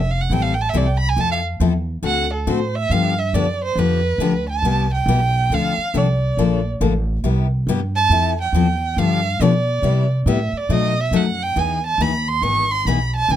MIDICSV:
0, 0, Header, 1, 5, 480
1, 0, Start_track
1, 0, Key_signature, 0, "major"
1, 0, Tempo, 432900
1, 1294, Time_signature, 4, 2, 24, 8
1, 14817, End_track
2, 0, Start_track
2, 0, Title_t, "Violin"
2, 0, Program_c, 0, 40
2, 0, Note_on_c, 0, 76, 82
2, 116, Note_on_c, 0, 77, 83
2, 132, Note_off_c, 0, 76, 0
2, 234, Note_on_c, 0, 78, 78
2, 250, Note_off_c, 0, 77, 0
2, 358, Note_on_c, 0, 79, 101
2, 374, Note_off_c, 0, 78, 0
2, 467, Note_on_c, 0, 77, 90
2, 483, Note_off_c, 0, 79, 0
2, 601, Note_on_c, 0, 79, 85
2, 617, Note_off_c, 0, 77, 0
2, 681, Note_on_c, 0, 81, 93
2, 697, Note_off_c, 0, 79, 0
2, 765, Note_on_c, 0, 76, 82
2, 781, Note_off_c, 0, 81, 0
2, 854, Note_on_c, 0, 74, 74
2, 871, Note_off_c, 0, 76, 0
2, 963, Note_on_c, 0, 79, 80
2, 980, Note_off_c, 0, 74, 0
2, 1077, Note_on_c, 0, 83, 99
2, 1094, Note_off_c, 0, 79, 0
2, 1207, Note_on_c, 0, 80, 85
2, 1224, Note_off_c, 0, 83, 0
2, 1327, Note_on_c, 0, 81, 98
2, 1344, Note_off_c, 0, 80, 0
2, 1452, Note_off_c, 0, 81, 0
2, 1458, Note_on_c, 0, 77, 83
2, 1547, Note_off_c, 0, 77, 0
2, 2277, Note_on_c, 0, 78, 95
2, 2552, Note_off_c, 0, 78, 0
2, 2587, Note_on_c, 0, 69, 47
2, 2758, Note_on_c, 0, 72, 84
2, 2775, Note_off_c, 0, 69, 0
2, 3053, Note_on_c, 0, 76, 106
2, 3070, Note_off_c, 0, 72, 0
2, 3232, Note_on_c, 0, 77, 98
2, 3248, Note_off_c, 0, 76, 0
2, 3528, Note_on_c, 0, 76, 86
2, 3545, Note_off_c, 0, 77, 0
2, 3707, Note_on_c, 0, 74, 81
2, 3724, Note_off_c, 0, 76, 0
2, 4009, Note_off_c, 0, 74, 0
2, 4039, Note_on_c, 0, 72, 81
2, 4200, Note_on_c, 0, 71, 85
2, 4217, Note_off_c, 0, 72, 0
2, 4973, Note_off_c, 0, 71, 0
2, 4980, Note_on_c, 0, 81, 89
2, 5420, Note_off_c, 0, 81, 0
2, 5475, Note_on_c, 0, 79, 90
2, 6144, Note_on_c, 0, 77, 92
2, 6160, Note_off_c, 0, 79, 0
2, 6625, Note_on_c, 0, 74, 67
2, 6642, Note_off_c, 0, 77, 0
2, 7391, Note_off_c, 0, 74, 0
2, 8823, Note_on_c, 0, 81, 115
2, 9263, Note_off_c, 0, 81, 0
2, 9326, Note_on_c, 0, 79, 88
2, 9964, Note_on_c, 0, 77, 101
2, 9980, Note_off_c, 0, 79, 0
2, 10448, Note_on_c, 0, 74, 90
2, 10465, Note_off_c, 0, 77, 0
2, 11221, Note_off_c, 0, 74, 0
2, 11405, Note_on_c, 0, 76, 75
2, 11720, Note_on_c, 0, 74, 85
2, 11736, Note_off_c, 0, 76, 0
2, 11887, Note_on_c, 0, 75, 97
2, 11904, Note_off_c, 0, 74, 0
2, 12197, Note_on_c, 0, 76, 93
2, 12214, Note_off_c, 0, 75, 0
2, 12378, Note_on_c, 0, 78, 85
2, 12395, Note_off_c, 0, 76, 0
2, 12672, Note_on_c, 0, 79, 105
2, 12689, Note_off_c, 0, 78, 0
2, 12851, Note_on_c, 0, 80, 89
2, 12868, Note_off_c, 0, 79, 0
2, 13141, Note_off_c, 0, 80, 0
2, 13154, Note_on_c, 0, 81, 96
2, 13324, Note_on_c, 0, 83, 88
2, 13340, Note_off_c, 0, 81, 0
2, 13618, Note_on_c, 0, 84, 97
2, 13635, Note_off_c, 0, 83, 0
2, 13783, Note_on_c, 0, 85, 112
2, 13800, Note_off_c, 0, 84, 0
2, 14094, Note_on_c, 0, 84, 109
2, 14110, Note_off_c, 0, 85, 0
2, 14265, Note_on_c, 0, 83, 86
2, 14282, Note_off_c, 0, 84, 0
2, 14566, Note_off_c, 0, 83, 0
2, 14589, Note_on_c, 0, 81, 105
2, 14757, Note_on_c, 0, 80, 90
2, 14773, Note_off_c, 0, 81, 0
2, 14817, Note_off_c, 0, 80, 0
2, 14817, End_track
3, 0, Start_track
3, 0, Title_t, "Steel-string acoustic guitar"
3, 0, Program_c, 1, 25
3, 341, Note_on_c, 1, 52, 65
3, 352, Note_on_c, 1, 55, 69
3, 352, Note_on_c, 1, 64, 63
3, 358, Note_on_c, 1, 60, 62
3, 363, Note_on_c, 1, 69, 77
3, 579, Note_off_c, 1, 52, 0
3, 584, Note_off_c, 1, 64, 0
3, 585, Note_off_c, 1, 55, 0
3, 587, Note_off_c, 1, 60, 0
3, 590, Note_off_c, 1, 69, 0
3, 815, Note_on_c, 1, 52, 86
3, 824, Note_on_c, 1, 55, 88
3, 825, Note_on_c, 1, 64, 76
3, 826, Note_on_c, 1, 60, 93
3, 833, Note_on_c, 1, 69, 83
3, 943, Note_off_c, 1, 52, 0
3, 947, Note_off_c, 1, 55, 0
3, 948, Note_off_c, 1, 60, 0
3, 948, Note_off_c, 1, 64, 0
3, 951, Note_off_c, 1, 69, 0
3, 1293, Note_on_c, 1, 53, 65
3, 1304, Note_on_c, 1, 60, 74
3, 1304, Note_on_c, 1, 64, 75
3, 1307, Note_on_c, 1, 69, 70
3, 1536, Note_off_c, 1, 53, 0
3, 1541, Note_off_c, 1, 60, 0
3, 1541, Note_off_c, 1, 64, 0
3, 1543, Note_off_c, 1, 69, 0
3, 1777, Note_on_c, 1, 53, 81
3, 1786, Note_on_c, 1, 60, 75
3, 1788, Note_on_c, 1, 69, 81
3, 1790, Note_on_c, 1, 64, 84
3, 1904, Note_off_c, 1, 53, 0
3, 1908, Note_off_c, 1, 60, 0
3, 1909, Note_off_c, 1, 69, 0
3, 1910, Note_off_c, 1, 64, 0
3, 2246, Note_on_c, 1, 57, 64
3, 2247, Note_on_c, 1, 50, 62
3, 2251, Note_on_c, 1, 60, 70
3, 2254, Note_on_c, 1, 69, 73
3, 2258, Note_on_c, 1, 66, 72
3, 2493, Note_off_c, 1, 50, 0
3, 2493, Note_off_c, 1, 57, 0
3, 2495, Note_off_c, 1, 60, 0
3, 2496, Note_off_c, 1, 69, 0
3, 2498, Note_off_c, 1, 66, 0
3, 2738, Note_on_c, 1, 50, 79
3, 2740, Note_on_c, 1, 57, 86
3, 2741, Note_on_c, 1, 60, 81
3, 2741, Note_on_c, 1, 69, 87
3, 2745, Note_on_c, 1, 66, 82
3, 2865, Note_off_c, 1, 50, 0
3, 2866, Note_off_c, 1, 57, 0
3, 2866, Note_off_c, 1, 60, 0
3, 2866, Note_off_c, 1, 69, 0
3, 2868, Note_off_c, 1, 66, 0
3, 3230, Note_on_c, 1, 53, 72
3, 3231, Note_on_c, 1, 50, 62
3, 3239, Note_on_c, 1, 67, 72
3, 3240, Note_on_c, 1, 59, 70
3, 3240, Note_on_c, 1, 62, 68
3, 3465, Note_off_c, 1, 53, 0
3, 3466, Note_off_c, 1, 50, 0
3, 3469, Note_off_c, 1, 67, 0
3, 3470, Note_off_c, 1, 59, 0
3, 3470, Note_off_c, 1, 62, 0
3, 3706, Note_on_c, 1, 53, 81
3, 3709, Note_on_c, 1, 50, 77
3, 3715, Note_on_c, 1, 59, 87
3, 3716, Note_on_c, 1, 62, 78
3, 3716, Note_on_c, 1, 67, 81
3, 3830, Note_off_c, 1, 53, 0
3, 3831, Note_off_c, 1, 50, 0
3, 3834, Note_off_c, 1, 59, 0
3, 3835, Note_off_c, 1, 62, 0
3, 3835, Note_off_c, 1, 67, 0
3, 4185, Note_on_c, 1, 50, 60
3, 4194, Note_on_c, 1, 53, 64
3, 4196, Note_on_c, 1, 59, 65
3, 4197, Note_on_c, 1, 67, 75
3, 4202, Note_on_c, 1, 62, 67
3, 4424, Note_off_c, 1, 50, 0
3, 4428, Note_off_c, 1, 53, 0
3, 4429, Note_off_c, 1, 59, 0
3, 4430, Note_off_c, 1, 67, 0
3, 4432, Note_off_c, 1, 62, 0
3, 4658, Note_on_c, 1, 50, 81
3, 4666, Note_on_c, 1, 62, 96
3, 4668, Note_on_c, 1, 53, 82
3, 4672, Note_on_c, 1, 67, 91
3, 4675, Note_on_c, 1, 59, 83
3, 4786, Note_off_c, 1, 50, 0
3, 4791, Note_off_c, 1, 62, 0
3, 4792, Note_off_c, 1, 53, 0
3, 4794, Note_off_c, 1, 67, 0
3, 4795, Note_off_c, 1, 59, 0
3, 5151, Note_on_c, 1, 48, 61
3, 5155, Note_on_c, 1, 55, 70
3, 5156, Note_on_c, 1, 59, 70
3, 5158, Note_on_c, 1, 64, 77
3, 5159, Note_on_c, 1, 67, 70
3, 5387, Note_off_c, 1, 48, 0
3, 5389, Note_off_c, 1, 55, 0
3, 5390, Note_off_c, 1, 59, 0
3, 5391, Note_off_c, 1, 64, 0
3, 5391, Note_off_c, 1, 67, 0
3, 5635, Note_on_c, 1, 48, 66
3, 5639, Note_on_c, 1, 55, 71
3, 5639, Note_on_c, 1, 64, 89
3, 5640, Note_on_c, 1, 59, 76
3, 5642, Note_on_c, 1, 67, 97
3, 5756, Note_off_c, 1, 48, 0
3, 5758, Note_off_c, 1, 55, 0
3, 5758, Note_off_c, 1, 59, 0
3, 5758, Note_off_c, 1, 64, 0
3, 5759, Note_off_c, 1, 67, 0
3, 6116, Note_on_c, 1, 50, 72
3, 6122, Note_on_c, 1, 53, 66
3, 6122, Note_on_c, 1, 60, 68
3, 6129, Note_on_c, 1, 69, 75
3, 6131, Note_on_c, 1, 62, 74
3, 6350, Note_off_c, 1, 50, 0
3, 6353, Note_off_c, 1, 53, 0
3, 6353, Note_off_c, 1, 60, 0
3, 6357, Note_off_c, 1, 69, 0
3, 6358, Note_off_c, 1, 62, 0
3, 6587, Note_on_c, 1, 50, 82
3, 6592, Note_on_c, 1, 53, 94
3, 6596, Note_on_c, 1, 62, 85
3, 6600, Note_on_c, 1, 69, 78
3, 6601, Note_on_c, 1, 60, 83
3, 6712, Note_off_c, 1, 50, 0
3, 6715, Note_off_c, 1, 53, 0
3, 6717, Note_off_c, 1, 62, 0
3, 6719, Note_off_c, 1, 60, 0
3, 6719, Note_off_c, 1, 69, 0
3, 7078, Note_on_c, 1, 50, 60
3, 7080, Note_on_c, 1, 53, 67
3, 7082, Note_on_c, 1, 69, 72
3, 7083, Note_on_c, 1, 62, 77
3, 7085, Note_on_c, 1, 58, 78
3, 7312, Note_off_c, 1, 50, 0
3, 7313, Note_off_c, 1, 53, 0
3, 7314, Note_off_c, 1, 62, 0
3, 7314, Note_off_c, 1, 69, 0
3, 7315, Note_off_c, 1, 58, 0
3, 7550, Note_on_c, 1, 53, 86
3, 7551, Note_on_c, 1, 50, 82
3, 7553, Note_on_c, 1, 58, 88
3, 7557, Note_on_c, 1, 62, 86
3, 7561, Note_on_c, 1, 69, 83
3, 7674, Note_off_c, 1, 53, 0
3, 7675, Note_off_c, 1, 50, 0
3, 7676, Note_off_c, 1, 58, 0
3, 7678, Note_off_c, 1, 62, 0
3, 7680, Note_off_c, 1, 69, 0
3, 8025, Note_on_c, 1, 48, 70
3, 8025, Note_on_c, 1, 55, 66
3, 8029, Note_on_c, 1, 64, 75
3, 8036, Note_on_c, 1, 67, 70
3, 8038, Note_on_c, 1, 59, 70
3, 8266, Note_off_c, 1, 48, 0
3, 8266, Note_off_c, 1, 55, 0
3, 8268, Note_off_c, 1, 64, 0
3, 8271, Note_off_c, 1, 67, 0
3, 8272, Note_off_c, 1, 59, 0
3, 8521, Note_on_c, 1, 48, 86
3, 8525, Note_on_c, 1, 55, 79
3, 8526, Note_on_c, 1, 64, 92
3, 8528, Note_on_c, 1, 59, 83
3, 8531, Note_on_c, 1, 67, 101
3, 8640, Note_off_c, 1, 48, 0
3, 8642, Note_off_c, 1, 55, 0
3, 8642, Note_off_c, 1, 64, 0
3, 8644, Note_off_c, 1, 59, 0
3, 8645, Note_off_c, 1, 67, 0
3, 8992, Note_on_c, 1, 53, 67
3, 9000, Note_on_c, 1, 60, 75
3, 9003, Note_on_c, 1, 64, 83
3, 9003, Note_on_c, 1, 69, 72
3, 9229, Note_off_c, 1, 53, 0
3, 9233, Note_off_c, 1, 60, 0
3, 9235, Note_off_c, 1, 64, 0
3, 9235, Note_off_c, 1, 69, 0
3, 9474, Note_on_c, 1, 53, 87
3, 9484, Note_on_c, 1, 64, 77
3, 9485, Note_on_c, 1, 60, 88
3, 9490, Note_on_c, 1, 69, 94
3, 9596, Note_off_c, 1, 53, 0
3, 9601, Note_off_c, 1, 64, 0
3, 9602, Note_off_c, 1, 60, 0
3, 9604, Note_off_c, 1, 69, 0
3, 9956, Note_on_c, 1, 50, 60
3, 9959, Note_on_c, 1, 53, 73
3, 9960, Note_on_c, 1, 59, 73
3, 9965, Note_on_c, 1, 62, 75
3, 9965, Note_on_c, 1, 67, 80
3, 10191, Note_off_c, 1, 50, 0
3, 10192, Note_off_c, 1, 53, 0
3, 10193, Note_off_c, 1, 59, 0
3, 10195, Note_off_c, 1, 62, 0
3, 10195, Note_off_c, 1, 67, 0
3, 10429, Note_on_c, 1, 50, 82
3, 10435, Note_on_c, 1, 59, 82
3, 10440, Note_on_c, 1, 53, 94
3, 10444, Note_on_c, 1, 62, 95
3, 10449, Note_on_c, 1, 67, 90
3, 10553, Note_off_c, 1, 50, 0
3, 10557, Note_off_c, 1, 59, 0
3, 10559, Note_off_c, 1, 53, 0
3, 10561, Note_off_c, 1, 62, 0
3, 10563, Note_off_c, 1, 67, 0
3, 10900, Note_on_c, 1, 48, 74
3, 10906, Note_on_c, 1, 55, 76
3, 10909, Note_on_c, 1, 64, 82
3, 10910, Note_on_c, 1, 59, 69
3, 10910, Note_on_c, 1, 67, 80
3, 11142, Note_off_c, 1, 48, 0
3, 11145, Note_off_c, 1, 55, 0
3, 11147, Note_off_c, 1, 59, 0
3, 11147, Note_off_c, 1, 64, 0
3, 11147, Note_off_c, 1, 67, 0
3, 11388, Note_on_c, 1, 48, 79
3, 11390, Note_on_c, 1, 55, 86
3, 11395, Note_on_c, 1, 59, 93
3, 11395, Note_on_c, 1, 64, 92
3, 11396, Note_on_c, 1, 67, 87
3, 11512, Note_off_c, 1, 48, 0
3, 11513, Note_off_c, 1, 55, 0
3, 11516, Note_off_c, 1, 59, 0
3, 11516, Note_off_c, 1, 64, 0
3, 11516, Note_off_c, 1, 67, 0
3, 11861, Note_on_c, 1, 47, 66
3, 11863, Note_on_c, 1, 57, 74
3, 11864, Note_on_c, 1, 54, 65
3, 11866, Note_on_c, 1, 63, 81
3, 11872, Note_on_c, 1, 66, 70
3, 12102, Note_off_c, 1, 47, 0
3, 12103, Note_off_c, 1, 54, 0
3, 12103, Note_off_c, 1, 57, 0
3, 12104, Note_off_c, 1, 63, 0
3, 12107, Note_off_c, 1, 66, 0
3, 12338, Note_on_c, 1, 47, 84
3, 12343, Note_on_c, 1, 54, 83
3, 12345, Note_on_c, 1, 57, 95
3, 12350, Note_on_c, 1, 66, 90
3, 12351, Note_on_c, 1, 63, 90
3, 12466, Note_off_c, 1, 47, 0
3, 12469, Note_off_c, 1, 54, 0
3, 12470, Note_off_c, 1, 57, 0
3, 12473, Note_off_c, 1, 63, 0
3, 12473, Note_off_c, 1, 66, 0
3, 12817, Note_on_c, 1, 52, 60
3, 12821, Note_on_c, 1, 63, 78
3, 12826, Note_on_c, 1, 59, 72
3, 12828, Note_on_c, 1, 68, 77
3, 13059, Note_off_c, 1, 52, 0
3, 13061, Note_off_c, 1, 63, 0
3, 13063, Note_off_c, 1, 59, 0
3, 13065, Note_off_c, 1, 68, 0
3, 13311, Note_on_c, 1, 52, 76
3, 13312, Note_on_c, 1, 63, 85
3, 13314, Note_on_c, 1, 59, 71
3, 13314, Note_on_c, 1, 68, 86
3, 13432, Note_off_c, 1, 52, 0
3, 13433, Note_off_c, 1, 59, 0
3, 13433, Note_off_c, 1, 63, 0
3, 13434, Note_off_c, 1, 68, 0
3, 13782, Note_on_c, 1, 52, 64
3, 13782, Note_on_c, 1, 59, 69
3, 13785, Note_on_c, 1, 63, 73
3, 13789, Note_on_c, 1, 68, 64
3, 14020, Note_off_c, 1, 52, 0
3, 14020, Note_off_c, 1, 59, 0
3, 14022, Note_off_c, 1, 63, 0
3, 14024, Note_off_c, 1, 68, 0
3, 14273, Note_on_c, 1, 52, 85
3, 14277, Note_on_c, 1, 59, 77
3, 14281, Note_on_c, 1, 63, 81
3, 14287, Note_on_c, 1, 68, 91
3, 14392, Note_off_c, 1, 52, 0
3, 14394, Note_off_c, 1, 59, 0
3, 14396, Note_off_c, 1, 63, 0
3, 14399, Note_off_c, 1, 68, 0
3, 14738, Note_on_c, 1, 49, 73
3, 14742, Note_on_c, 1, 52, 67
3, 14747, Note_on_c, 1, 63, 76
3, 14750, Note_on_c, 1, 68, 82
3, 14817, Note_off_c, 1, 49, 0
3, 14817, Note_off_c, 1, 52, 0
3, 14817, Note_off_c, 1, 63, 0
3, 14817, Note_off_c, 1, 68, 0
3, 14817, End_track
4, 0, Start_track
4, 0, Title_t, "Upright bass"
4, 0, Program_c, 2, 32
4, 0, Note_on_c, 2, 29, 87
4, 310, Note_off_c, 2, 29, 0
4, 329, Note_on_c, 2, 33, 84
4, 797, Note_off_c, 2, 33, 0
4, 817, Note_on_c, 2, 36, 76
4, 1282, Note_off_c, 2, 36, 0
4, 1291, Note_on_c, 2, 41, 83
4, 1758, Note_off_c, 2, 41, 0
4, 1772, Note_on_c, 2, 40, 79
4, 2239, Note_off_c, 2, 40, 0
4, 2246, Note_on_c, 2, 38, 78
4, 2717, Note_off_c, 2, 38, 0
4, 2737, Note_on_c, 2, 45, 75
4, 3203, Note_off_c, 2, 45, 0
4, 3212, Note_on_c, 2, 43, 88
4, 3680, Note_off_c, 2, 43, 0
4, 3695, Note_on_c, 2, 42, 79
4, 4157, Note_off_c, 2, 42, 0
4, 4163, Note_on_c, 2, 41, 90
4, 4631, Note_off_c, 2, 41, 0
4, 4638, Note_on_c, 2, 38, 80
4, 5114, Note_off_c, 2, 38, 0
4, 5125, Note_on_c, 2, 36, 79
4, 5598, Note_off_c, 2, 36, 0
4, 5608, Note_on_c, 2, 35, 96
4, 6080, Note_off_c, 2, 35, 0
4, 6096, Note_on_c, 2, 38, 82
4, 6384, Note_off_c, 2, 38, 0
4, 6584, Note_on_c, 2, 36, 77
4, 7049, Note_off_c, 2, 36, 0
4, 7064, Note_on_c, 2, 34, 79
4, 7529, Note_off_c, 2, 34, 0
4, 7547, Note_on_c, 2, 33, 84
4, 8011, Note_off_c, 2, 33, 0
4, 8025, Note_on_c, 2, 36, 80
4, 8490, Note_off_c, 2, 36, 0
4, 8500, Note_on_c, 2, 43, 85
4, 8967, Note_off_c, 2, 43, 0
4, 8975, Note_on_c, 2, 41, 88
4, 9444, Note_off_c, 2, 41, 0
4, 9453, Note_on_c, 2, 40, 91
4, 9923, Note_off_c, 2, 40, 0
4, 9942, Note_on_c, 2, 43, 86
4, 10407, Note_off_c, 2, 43, 0
4, 10417, Note_on_c, 2, 47, 86
4, 10885, Note_off_c, 2, 47, 0
4, 10893, Note_on_c, 2, 48, 85
4, 11362, Note_off_c, 2, 48, 0
4, 11375, Note_on_c, 2, 45, 96
4, 11662, Note_off_c, 2, 45, 0
4, 11853, Note_on_c, 2, 47, 85
4, 12313, Note_off_c, 2, 47, 0
4, 12320, Note_on_c, 2, 42, 87
4, 12794, Note_off_c, 2, 42, 0
4, 12818, Note_on_c, 2, 40, 80
4, 13276, Note_off_c, 2, 40, 0
4, 13283, Note_on_c, 2, 39, 86
4, 13755, Note_off_c, 2, 39, 0
4, 13767, Note_on_c, 2, 32, 85
4, 14236, Note_off_c, 2, 32, 0
4, 14250, Note_on_c, 2, 35, 74
4, 14717, Note_off_c, 2, 35, 0
4, 14730, Note_on_c, 2, 37, 86
4, 14817, Note_off_c, 2, 37, 0
4, 14817, End_track
5, 0, Start_track
5, 0, Title_t, "Muted upright bass strokes"
5, 6406, Note_on_c, 9, 29, 37
5, 6517, Note_off_c, 9, 29, 0
5, 11673, Note_on_c, 9, 29, 42
5, 11784, Note_off_c, 9, 29, 0
5, 14817, End_track
0, 0, End_of_file